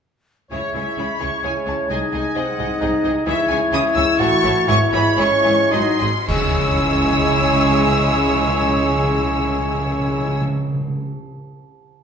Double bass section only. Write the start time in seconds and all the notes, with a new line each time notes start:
0.51 C#2
0.75 C#2
0.98 C#2
1.21 C#2
1.45 C#2
1.67 C#2
1.90 C2
2.13 C2
2.36 C2
2.59 C2
2.82 C2
3.04 C2
3.26 C#2
3.49 C#2
3.72 C#2
3.95 C#2
4.19 A1
4.44 A1
4.68 G#1
4.93 G#1
5.18 G#1
5.45 G#1
5.72 G#1
6.01 G#1
6.29 C#2